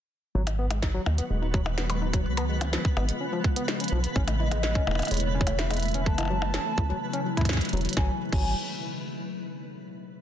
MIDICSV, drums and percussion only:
0, 0, Header, 1, 3, 480
1, 0, Start_track
1, 0, Tempo, 476190
1, 352, Time_signature, 4, 2, 24, 8
1, 10296, End_track
2, 0, Start_track
2, 0, Title_t, "Percussion blips"
2, 472, Note_on_c, 9, 60, 51
2, 573, Note_off_c, 9, 60, 0
2, 711, Note_on_c, 9, 60, 79
2, 812, Note_off_c, 9, 60, 0
2, 1072, Note_on_c, 9, 60, 78
2, 1173, Note_off_c, 9, 60, 0
2, 1672, Note_on_c, 9, 60, 82
2, 1773, Note_off_c, 9, 60, 0
2, 1911, Note_on_c, 9, 60, 64
2, 2012, Note_off_c, 9, 60, 0
2, 2392, Note_on_c, 9, 60, 52
2, 2493, Note_off_c, 9, 60, 0
2, 2631, Note_on_c, 9, 60, 78
2, 2732, Note_off_c, 9, 60, 0
2, 2991, Note_on_c, 9, 60, 77
2, 3092, Note_off_c, 9, 60, 0
2, 4310, Note_on_c, 9, 60, 52
2, 4411, Note_off_c, 9, 60, 0
2, 4551, Note_on_c, 9, 60, 76
2, 4652, Note_off_c, 9, 60, 0
2, 4911, Note_on_c, 9, 60, 72
2, 4952, Note_off_c, 9, 60, 0
2, 4952, Note_on_c, 9, 60, 61
2, 4992, Note_off_c, 9, 60, 0
2, 4992, Note_on_c, 9, 60, 46
2, 5032, Note_off_c, 9, 60, 0
2, 5032, Note_on_c, 9, 60, 39
2, 5071, Note_off_c, 9, 60, 0
2, 5071, Note_on_c, 9, 60, 31
2, 5112, Note_off_c, 9, 60, 0
2, 5112, Note_on_c, 9, 60, 27
2, 5212, Note_off_c, 9, 60, 0
2, 5512, Note_on_c, 9, 60, 72
2, 5612, Note_off_c, 9, 60, 0
2, 5751, Note_on_c, 9, 60, 59
2, 5852, Note_off_c, 9, 60, 0
2, 6231, Note_on_c, 9, 60, 49
2, 6255, Note_off_c, 9, 60, 0
2, 6255, Note_on_c, 9, 60, 38
2, 6278, Note_off_c, 9, 60, 0
2, 6278, Note_on_c, 9, 60, 31
2, 6303, Note_off_c, 9, 60, 0
2, 6303, Note_on_c, 9, 60, 24
2, 6327, Note_off_c, 9, 60, 0
2, 6327, Note_on_c, 9, 60, 21
2, 6428, Note_off_c, 9, 60, 0
2, 6470, Note_on_c, 9, 60, 78
2, 6571, Note_off_c, 9, 60, 0
2, 10296, End_track
3, 0, Start_track
3, 0, Title_t, "Drums"
3, 472, Note_on_c, 9, 42, 52
3, 573, Note_off_c, 9, 42, 0
3, 711, Note_on_c, 9, 42, 67
3, 812, Note_off_c, 9, 42, 0
3, 832, Note_on_c, 9, 36, 100
3, 832, Note_on_c, 9, 38, 118
3, 932, Note_off_c, 9, 36, 0
3, 933, Note_off_c, 9, 38, 0
3, 1192, Note_on_c, 9, 42, 65
3, 1293, Note_off_c, 9, 42, 0
3, 1552, Note_on_c, 9, 36, 119
3, 1653, Note_off_c, 9, 36, 0
3, 1791, Note_on_c, 9, 38, 116
3, 1892, Note_off_c, 9, 38, 0
3, 1911, Note_on_c, 9, 42, 53
3, 2012, Note_off_c, 9, 42, 0
3, 2152, Note_on_c, 9, 36, 106
3, 2152, Note_on_c, 9, 42, 70
3, 2253, Note_off_c, 9, 36, 0
3, 2253, Note_off_c, 9, 42, 0
3, 2392, Note_on_c, 9, 42, 54
3, 2493, Note_off_c, 9, 42, 0
3, 2631, Note_on_c, 9, 42, 70
3, 2732, Note_off_c, 9, 42, 0
3, 2752, Note_on_c, 9, 38, 117
3, 2853, Note_off_c, 9, 38, 0
3, 2872, Note_on_c, 9, 36, 124
3, 2972, Note_off_c, 9, 36, 0
3, 3111, Note_on_c, 9, 42, 69
3, 3212, Note_off_c, 9, 42, 0
3, 3471, Note_on_c, 9, 36, 105
3, 3572, Note_off_c, 9, 36, 0
3, 3592, Note_on_c, 9, 42, 72
3, 3693, Note_off_c, 9, 42, 0
3, 3711, Note_on_c, 9, 38, 122
3, 3812, Note_off_c, 9, 38, 0
3, 3831, Note_on_c, 9, 42, 49
3, 3871, Note_off_c, 9, 42, 0
3, 3871, Note_on_c, 9, 42, 42
3, 3912, Note_off_c, 9, 42, 0
3, 3912, Note_on_c, 9, 42, 34
3, 4012, Note_off_c, 9, 42, 0
3, 4071, Note_on_c, 9, 42, 69
3, 4171, Note_off_c, 9, 42, 0
3, 4191, Note_on_c, 9, 36, 126
3, 4292, Note_off_c, 9, 36, 0
3, 4310, Note_on_c, 9, 42, 53
3, 4411, Note_off_c, 9, 42, 0
3, 4551, Note_on_c, 9, 42, 69
3, 4652, Note_off_c, 9, 42, 0
3, 4670, Note_on_c, 9, 38, 120
3, 4770, Note_off_c, 9, 38, 0
3, 4791, Note_on_c, 9, 36, 113
3, 4892, Note_off_c, 9, 36, 0
3, 5032, Note_on_c, 9, 42, 30
3, 5062, Note_off_c, 9, 42, 0
3, 5062, Note_on_c, 9, 42, 32
3, 5092, Note_off_c, 9, 42, 0
3, 5092, Note_on_c, 9, 42, 40
3, 5121, Note_off_c, 9, 42, 0
3, 5121, Note_on_c, 9, 42, 40
3, 5152, Note_off_c, 9, 42, 0
3, 5152, Note_on_c, 9, 42, 49
3, 5181, Note_off_c, 9, 42, 0
3, 5181, Note_on_c, 9, 42, 48
3, 5211, Note_off_c, 9, 42, 0
3, 5211, Note_on_c, 9, 42, 53
3, 5241, Note_off_c, 9, 42, 0
3, 5241, Note_on_c, 9, 42, 58
3, 5342, Note_off_c, 9, 42, 0
3, 5451, Note_on_c, 9, 36, 117
3, 5512, Note_on_c, 9, 42, 71
3, 5552, Note_off_c, 9, 36, 0
3, 5612, Note_off_c, 9, 42, 0
3, 5632, Note_on_c, 9, 38, 127
3, 5732, Note_off_c, 9, 38, 0
3, 5751, Note_on_c, 9, 42, 51
3, 5782, Note_off_c, 9, 42, 0
3, 5782, Note_on_c, 9, 42, 41
3, 5812, Note_off_c, 9, 42, 0
3, 5812, Note_on_c, 9, 42, 34
3, 5842, Note_off_c, 9, 42, 0
3, 5842, Note_on_c, 9, 42, 28
3, 5872, Note_off_c, 9, 42, 0
3, 5872, Note_on_c, 9, 42, 24
3, 5902, Note_off_c, 9, 42, 0
3, 5902, Note_on_c, 9, 42, 19
3, 5931, Note_off_c, 9, 42, 0
3, 5931, Note_on_c, 9, 42, 17
3, 5961, Note_off_c, 9, 42, 0
3, 5961, Note_on_c, 9, 42, 13
3, 5991, Note_off_c, 9, 42, 0
3, 5991, Note_on_c, 9, 42, 67
3, 6092, Note_off_c, 9, 42, 0
3, 6111, Note_on_c, 9, 36, 118
3, 6212, Note_off_c, 9, 36, 0
3, 6231, Note_on_c, 9, 42, 51
3, 6331, Note_off_c, 9, 42, 0
3, 6591, Note_on_c, 9, 38, 120
3, 6692, Note_off_c, 9, 38, 0
3, 6832, Note_on_c, 9, 36, 127
3, 6932, Note_off_c, 9, 36, 0
3, 7192, Note_on_c, 9, 42, 35
3, 7292, Note_off_c, 9, 42, 0
3, 7432, Note_on_c, 9, 36, 49
3, 7432, Note_on_c, 9, 42, 30
3, 7472, Note_off_c, 9, 36, 0
3, 7472, Note_on_c, 9, 36, 57
3, 7511, Note_off_c, 9, 36, 0
3, 7511, Note_on_c, 9, 36, 69
3, 7512, Note_off_c, 9, 42, 0
3, 7512, Note_on_c, 9, 42, 40
3, 7551, Note_off_c, 9, 36, 0
3, 7551, Note_on_c, 9, 36, 75
3, 7552, Note_on_c, 9, 38, 127
3, 7591, Note_off_c, 9, 42, 0
3, 7591, Note_on_c, 9, 42, 52
3, 7592, Note_off_c, 9, 36, 0
3, 7592, Note_on_c, 9, 36, 88
3, 7632, Note_off_c, 9, 36, 0
3, 7632, Note_on_c, 9, 36, 89
3, 7653, Note_off_c, 9, 38, 0
3, 7672, Note_off_c, 9, 42, 0
3, 7672, Note_on_c, 9, 42, 50
3, 7711, Note_off_c, 9, 42, 0
3, 7711, Note_on_c, 9, 42, 39
3, 7733, Note_off_c, 9, 36, 0
3, 7751, Note_off_c, 9, 42, 0
3, 7751, Note_on_c, 9, 42, 32
3, 7792, Note_off_c, 9, 42, 0
3, 7792, Note_on_c, 9, 42, 28
3, 7833, Note_off_c, 9, 42, 0
3, 7833, Note_on_c, 9, 42, 23
3, 7872, Note_off_c, 9, 42, 0
3, 7872, Note_on_c, 9, 42, 19
3, 7911, Note_off_c, 9, 42, 0
3, 7911, Note_on_c, 9, 42, 29
3, 7953, Note_off_c, 9, 42, 0
3, 7953, Note_on_c, 9, 42, 40
3, 7992, Note_off_c, 9, 42, 0
3, 7992, Note_on_c, 9, 42, 50
3, 8032, Note_on_c, 9, 36, 117
3, 8032, Note_on_c, 9, 38, 85
3, 8093, Note_off_c, 9, 42, 0
3, 8132, Note_off_c, 9, 38, 0
3, 8133, Note_off_c, 9, 36, 0
3, 8392, Note_on_c, 9, 36, 115
3, 8392, Note_on_c, 9, 49, 83
3, 8493, Note_off_c, 9, 36, 0
3, 8493, Note_off_c, 9, 49, 0
3, 10296, End_track
0, 0, End_of_file